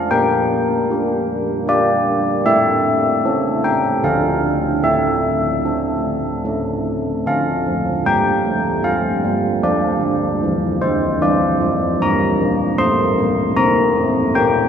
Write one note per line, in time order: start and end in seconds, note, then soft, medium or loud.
0.11 0.87 A#3 medium
0.11 1.24 G5 medium
0.90 1.63 D4 soft
0.90 1.64 G4 soft
1.67 2.41 D4 soft
1.67 2.42 G4 soft
1.67 2.43 D5 medium
2.45 3.22 A3 medium
2.45 3.60 E5 medium
3.25 4.00 C#4 soft
3.25 4.00 A4 soft
3.64 4.02 G5 medium
4.04 4.82 D3 medium
4.04 4.81 D4 soft
4.04 4.81 A4 soft
4.04 4.81 F5 medium
4.83 5.63 A3 soft
4.83 6.83 E5 medium
5.64 6.42 D4 soft
5.64 6.43 A4 soft
6.45 7.23 A3 soft
6.45 7.22 C#4 soft
6.45 7.22 A4 soft
7.26 7.58 D3 soft
7.26 9.59 A4 soft
7.26 8.03 F5 medium
7.67 7.99 F3 soft
8.06 8.38 G3 soft
8.06 8.82 G5 medium
8.46 8.77 A3 soft
8.84 9.16 F3 soft
8.84 9.60 F5 medium
9.24 9.56 G3 soft
9.63 9.95 F3 soft
9.63 11.97 A4 soft
9.63 10.77 D5 medium
10.00 10.32 D3 soft
10.43 10.74 E3 soft
10.82 11.13 D3 soft
10.82 11.19 C5 medium
11.22 11.54 E3 soft
11.22 11.99 D5 medium
11.61 11.93 F3 soft
12.02 12.33 G3 soft
12.02 14.31 A#4 soft
12.02 12.76 A#5 medium
12.41 12.71 A#3 soft
12.78 13.09 A3 medium
12.78 13.53 C6 medium
13.18 13.49 A#3 soft
13.57 13.88 C4 medium
13.57 14.31 A#5 medium
13.96 14.27 A3 medium
14.34 14.65 A#3 soft
14.34 14.69 A#4 soft
14.34 14.69 G5 medium